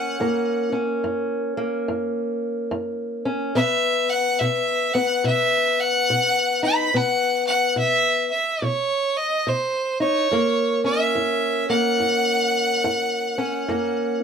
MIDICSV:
0, 0, Header, 1, 3, 480
1, 0, Start_track
1, 0, Key_signature, 6, "major"
1, 0, Tempo, 842697
1, 109, Time_signature, 4, 2, 24, 8
1, 8108, End_track
2, 0, Start_track
2, 0, Title_t, "Fiddle"
2, 0, Program_c, 0, 110
2, 0, Note_on_c, 0, 78, 102
2, 411, Note_off_c, 0, 78, 0
2, 2022, Note_on_c, 0, 76, 104
2, 2331, Note_on_c, 0, 78, 97
2, 2340, Note_off_c, 0, 76, 0
2, 2504, Note_on_c, 0, 76, 94
2, 2513, Note_off_c, 0, 78, 0
2, 2810, Note_on_c, 0, 78, 91
2, 2818, Note_off_c, 0, 76, 0
2, 2987, Note_off_c, 0, 78, 0
2, 2999, Note_on_c, 0, 76, 104
2, 3303, Note_on_c, 0, 78, 113
2, 3312, Note_off_c, 0, 76, 0
2, 3774, Note_off_c, 0, 78, 0
2, 3781, Note_on_c, 0, 83, 100
2, 3967, Note_on_c, 0, 78, 110
2, 3976, Note_off_c, 0, 83, 0
2, 4249, Note_off_c, 0, 78, 0
2, 4253, Note_on_c, 0, 78, 89
2, 4417, Note_off_c, 0, 78, 0
2, 4436, Note_on_c, 0, 76, 101
2, 4711, Note_off_c, 0, 76, 0
2, 4733, Note_on_c, 0, 76, 89
2, 4920, Note_on_c, 0, 73, 93
2, 4929, Note_off_c, 0, 76, 0
2, 5221, Note_on_c, 0, 75, 94
2, 5230, Note_off_c, 0, 73, 0
2, 5401, Note_on_c, 0, 72, 83
2, 5410, Note_off_c, 0, 75, 0
2, 5695, Note_off_c, 0, 72, 0
2, 5701, Note_on_c, 0, 73, 90
2, 6152, Note_off_c, 0, 73, 0
2, 6181, Note_on_c, 0, 76, 98
2, 6633, Note_off_c, 0, 76, 0
2, 6662, Note_on_c, 0, 78, 100
2, 8075, Note_off_c, 0, 78, 0
2, 8108, End_track
3, 0, Start_track
3, 0, Title_t, "Steel-string acoustic guitar"
3, 0, Program_c, 1, 25
3, 0, Note_on_c, 1, 42, 73
3, 0, Note_on_c, 1, 58, 58
3, 0, Note_on_c, 1, 61, 59
3, 77, Note_off_c, 1, 42, 0
3, 91, Note_off_c, 1, 58, 0
3, 114, Note_on_c, 1, 42, 70
3, 118, Note_on_c, 1, 58, 60
3, 405, Note_off_c, 1, 61, 0
3, 412, Note_on_c, 1, 61, 55
3, 554, Note_off_c, 1, 42, 0
3, 591, Note_on_c, 1, 42, 70
3, 889, Note_off_c, 1, 58, 0
3, 896, Note_on_c, 1, 58, 60
3, 1032, Note_off_c, 1, 42, 0
3, 1072, Note_on_c, 1, 42, 73
3, 1513, Note_off_c, 1, 42, 0
3, 1545, Note_on_c, 1, 42, 77
3, 1848, Note_off_c, 1, 61, 0
3, 1853, Note_on_c, 1, 61, 58
3, 1989, Note_off_c, 1, 42, 0
3, 2008, Note_off_c, 1, 58, 0
3, 2023, Note_on_c, 1, 47, 69
3, 2027, Note_on_c, 1, 59, 55
3, 2029, Note_off_c, 1, 61, 0
3, 2468, Note_off_c, 1, 47, 0
3, 2511, Note_on_c, 1, 47, 67
3, 2815, Note_off_c, 1, 59, 0
3, 2818, Note_on_c, 1, 59, 57
3, 2952, Note_off_c, 1, 47, 0
3, 2986, Note_on_c, 1, 47, 77
3, 3429, Note_off_c, 1, 47, 0
3, 3474, Note_on_c, 1, 47, 72
3, 3775, Note_on_c, 1, 63, 59
3, 3914, Note_off_c, 1, 47, 0
3, 3928, Note_off_c, 1, 63, 0
3, 3930, Note_off_c, 1, 59, 0
3, 3953, Note_on_c, 1, 47, 69
3, 3956, Note_on_c, 1, 59, 58
3, 4394, Note_off_c, 1, 47, 0
3, 4420, Note_on_c, 1, 47, 67
3, 4731, Note_off_c, 1, 59, 0
3, 4867, Note_off_c, 1, 47, 0
3, 4911, Note_on_c, 1, 47, 75
3, 5353, Note_off_c, 1, 47, 0
3, 5392, Note_on_c, 1, 47, 75
3, 5696, Note_on_c, 1, 63, 61
3, 5834, Note_off_c, 1, 47, 0
3, 5850, Note_off_c, 1, 63, 0
3, 5875, Note_on_c, 1, 42, 68
3, 5882, Note_on_c, 1, 58, 53
3, 6177, Note_on_c, 1, 61, 60
3, 6316, Note_off_c, 1, 42, 0
3, 6353, Note_on_c, 1, 42, 67
3, 6660, Note_off_c, 1, 58, 0
3, 6662, Note_on_c, 1, 58, 58
3, 6795, Note_off_c, 1, 42, 0
3, 6834, Note_on_c, 1, 42, 78
3, 7276, Note_off_c, 1, 42, 0
3, 7315, Note_on_c, 1, 42, 79
3, 7619, Note_off_c, 1, 61, 0
3, 7621, Note_on_c, 1, 61, 58
3, 7757, Note_off_c, 1, 42, 0
3, 7775, Note_off_c, 1, 58, 0
3, 7794, Note_on_c, 1, 42, 71
3, 7799, Note_on_c, 1, 58, 60
3, 8102, Note_off_c, 1, 61, 0
3, 8108, Note_off_c, 1, 42, 0
3, 8108, Note_off_c, 1, 58, 0
3, 8108, End_track
0, 0, End_of_file